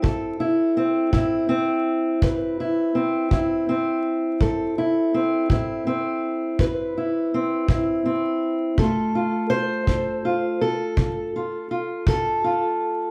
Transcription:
Already playing: C4 E4
0.02 A2 A4, kick
0.40 E4
0.77 C4
1.13 A2 E4, kick
1.49 C4
2.22 A2 B4, kick
2.60 E4
2.95 C4
3.31 A2 E4, kick
3.69 C4
4.41 A2 A4, kick
4.78 E4
5.14 C4
5.50 A2 E4, kick
5.87 C4
6.59 A2 B4, kick
6.97 E4
7.34 C4
7.68 A2 E4, kick
8.05 C4
8.78 D3 A3 F4 A4, kick
9.15 F4
9.50 C5
9.87 D3 A4, kick
10.25 F4
10.61 A4
10.97 D3, kick
11.36 F4
11.71 F4
12.07 D3 A4, kick
12.44 F4

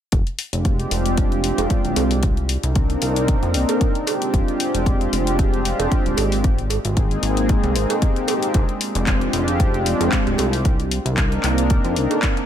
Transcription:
0.12 F1, kick, closed hi-hat
0.27 closed hi-hat
0.39 open hi-hat
0.52 F1 G#3 C4 D4 F4 G4, closed hi-hat
0.65 kick, closed hi-hat
0.80 closed hi-hat
0.91 F1, open hi-hat
1.06 closed hi-hat
1.17 G#3 C4 D4 F4 G4, kick, closed hi-hat
1.32 closed hi-hat
1.44 open hi-hat
1.58 F1, closed hi-hat, cowbell
1.70 kick, closed hi-hat
1.84 D1 G#3 C4 D4 F4 G4, closed hi-hat
1.96 C2 G#3 C4 D4 F4 G4, open hi-hat, cowbell
2.11 open hi-hat
2.23 kick, closed hi-hat
2.37 closed hi-hat
2.49 open hi-hat
2.63 C2 A#3 C4 D4 D#4 A#4, closed hi-hat
2.75 kick, closed hi-hat
2.90 closed hi-hat
3.02 C2, open hi-hat
3.16 closed hi-hat
3.28 kick, closed hi-hat
3.43 F2, closed hi-hat
3.54 C2, open hi-hat
3.69 closed hi-hat, cowbell
3.81 kick, closed hi-hat
3.95 A#3 C4 D4 D#4 G4, closed hi-hat
4.06 G#3 C4 D4 F4 G4, open hi-hat, cowbell
4.22 closed hi-hat
4.34 F1, kick, closed hi-hat
4.48 closed hi-hat
4.60 open hi-hat
4.73 F1 G#3 C4 D4 F4 G4, closed hi-hat
4.86 kick, closed hi-hat
5.01 closed hi-hat
5.13 F1, open hi-hat
5.27 closed hi-hat
5.38 G#3 C4 D4 F4 G4, kick, closed hi-hat
5.54 closed hi-hat
5.65 open hi-hat
5.80 F1, closed hi-hat, cowbell
5.92 kick, closed hi-hat
6.05 D1 G#3 C4 D4 F4 G4, closed hi-hat
6.17 G#1 G#3 A#3 C4 D#4 G4, open hi-hat, cowbell
6.32 open hi-hat
6.44 kick, closed hi-hat
6.58 closed hi-hat
6.70 open hi-hat, cowbell
6.84 G#1 G#3 A#3 C4 D#4 G#4, closed hi-hat
6.97 kick, closed hi-hat
7.11 closed hi-hat
7.23 G#1, open hi-hat
7.37 closed hi-hat
7.49 kick, closed hi-hat
7.64 C2, closed hi-hat
7.75 G#1, open hi-hat
7.90 G#3 A#3 C4 D#4 G4, closed hi-hat, cowbell
8.02 kick, closed hi-hat
8.16 closed hi-hat
8.28 G#3 A#3 C4 D#4 G4, open hi-hat, cowbell
8.42 G#3 C4 D4 F4 G#4, closed hi-hat
8.54 F1, kick, closed hi-hat
8.69 closed hi-hat
8.81 open hi-hat
8.95 F1 G#3 C4 D4 F4 G4, closed hi-hat
9.07 kick, clap, closed hi-hat
9.21 closed hi-hat
9.33 F1, open hi-hat
9.48 closed hi-hat
9.59 G#3 C4 D4 F4 G4, kick, closed hi-hat
9.74 closed hi-hat
9.86 open hi-hat
10.01 F1, closed hi-hat, cowbell
10.12 kick, clap, closed hi-hat
10.26 D1 G#3 C4 D4 F4 G4, closed hi-hat
10.38 C2 G#3 C4 D4 F4 G4, open hi-hat, cowbell
10.53 open hi-hat
10.65 kick, closed hi-hat
10.80 closed hi-hat
10.91 open hi-hat
11.05 C2 A#3 C4 D4 D#4 A#4, closed hi-hat
11.17 kick, clap, closed hi-hat
11.32 closed hi-hat
11.43 C2, clap, open hi-hat
11.58 closed hi-hat
11.70 kick, closed hi-hat
11.85 F2, closed hi-hat
11.96 C2, open hi-hat
12.11 closed hi-hat, cowbell
12.22 kick, clap, closed hi-hat
12.37 A#3 C4 D4 D#4 G4, closed hi-hat

